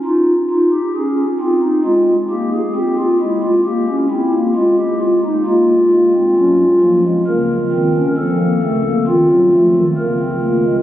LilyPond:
<<
  \new Staff \with { instrumentName = "Pipe organ" } { \time 3/4 \key bes \minor \tempo 4 = 66 ees'8 f'16 g'16 aes'8 f'16 ees'16 f'8 g'16 aes'16 | g'16 f'16 e'16 f'16 g'8 e'8 f'16 g'16 f'16 ees'16 | f'2 bes'4 | a'4 f'4 bes'4 | }
  \new Staff \with { instrumentName = "Pipe organ" } { \clef bass \time 3/4 \key bes \minor << { f'8 ees'8 des'8 c'8 aes8 bes8 | c'8 aes8 bes16 des'16 c'16 bes16 aes4 | aes8 bes16 c'16 des'8 bes16 aes16 bes8 c'16 des'16 | c'16 bes16 a16 bes16 c'8 a8 bes16 c'16 bes16 aes16 | } \\ { r2. | r2. | bes8 <aes, aes>8 <ges, ges>8 <f, f>8 <des, des>8 <ees, ees>8 | <f, f>8 <des, des>8 <ees, ees>16 <ges, ges>16 <f, f>16 <ees, ees>16 <des, des>4 | } >> }
>>